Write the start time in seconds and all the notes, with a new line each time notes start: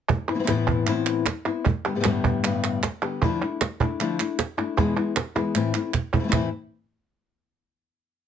0.09 muted nylon-string guitar stroke, cajon bass
0.28 B3 C4 E4
0.34 E3 B3 C4 E4
0.39 E3 B3 C4 E4
0.43 E3 B3 C4 E4
0.48 A2 E3 B3 C4 E4, cajon slap, clap
0.68 cajon bass
0.87 A2 E3 B3 C4 E4, cajon slap, clap
1.06 clap
1.26 muted nylon-string guitar stroke, cajon slap, clap
1.46 B3 C4 E4
1.66 muted nylon-string guitar stroke, cajon bass
1.85 D3 G3 B3 G4, cajon slap
1.95 A2 D3 G3 B3 G4
2.00 A2 D3 G3 B3 G4
2.04 G2 A2 D3 G3 B3 G4, cajon slap, clap
2.24 cajon bass
2.43 G2 A2 D3 G3 B3 G4, clap
2.64 clap
2.83 muted nylon-string guitar stroke, cajon slap, clap
3.02 D3 G3 B3 G4
3.21 D3 F3 A3 D4 E4, cajon bass
3.41 A3 D4 E4
3.61 muted nylon-string guitar stroke, cajon slap, clap
3.80 A3 D4 E4, cajon bass
4.00 D3 F3 A3 D4 E4, clap
4.19 A3 D4 E4, clap
4.39 muted nylon-string guitar stroke, cajon slap, clap
4.57 A3 D4 E4
4.77 E2 B2 E3 G#3 B3 E4, cajon bass, cajon slap
4.96 E3 G#3 B3 E4
5.16 muted nylon-string guitar stroke, cajon slap, clap
5.35 E3 G#3 B3 E4, cajon slap
5.54 A2 E3 A3 C4 E4, clap
5.74 A3 C4 E4, clap
5.93 muted nylon-string guitar stroke, cajon bass, clap
6.13 A3 C4 E4, cajon bass
6.19 E3 A3 C4 E4
6.24 E3 A3 C4 E4
6.28 E3 A3 C4 E4, clap
6.33 A2 E3 A3 C4 E4, cajon bass